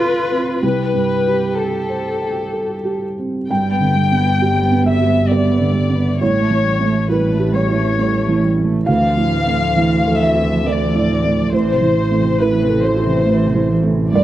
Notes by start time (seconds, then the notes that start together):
Already playing: D2 A2 F4 A4 B4 C5 F5
0.00 F4
0.30 C4
0.61 C2 G4 B4
0.94 G2
1.27 G4
1.57 A4
1.89 C5
2.22 G5
2.53 A4
2.85 G4
3.18 C4
3.48 G1 G2 G3 G5
3.71 B3
3.80 D3
3.95 G3
4.11 B3
4.17 B3
4.40 G3 G4
4.61 B3
4.71 B3
4.83 G3 E5
5.01 G4
5.05 B3
5.27 G3 B3 D5
5.31 D5
5.51 B3
5.60 D3
5.71 G3
5.90 B3
5.95 B3
6.18 A1 A2 G3 C#5
6.41 A3
6.50 E3
6.64 G3
6.80 A3
6.86 A3
7.09 G3 E4 B4
7.32 A3
7.39 G4
7.52 G3 C#5
7.68 E4
7.74 A3
7.98 G3 A3
8.20 A3
8.28 E3
8.44 G3
8.57 A3
8.64 A3
8.86 D2 E3 F5
9.10 F3
9.17 A2
9.33 E3
9.47 A3
9.55 F3
9.76 E3
10.01 F3
10.06 A4
10.21 E3 E5
10.35 E4
10.46 F3
10.64 E3 A3 D5
10.90 F3
10.95 A2
11.11 E3
11.23 A3
11.33 F3
11.52 A1 A2 E3 C5
11.74 C3
11.81 E3
11.96 E3
12.11 A3
12.20 C3
12.40 E3 E4 B4
12.62 C3
12.69 A4
12.83 E3 C5
12.97 E4
13.05 C3
13.26 E3 A3
13.47 C3
13.55 E3
13.70 E3
13.83 A3
13.91 C3
14.12 G1 D2 G2 D5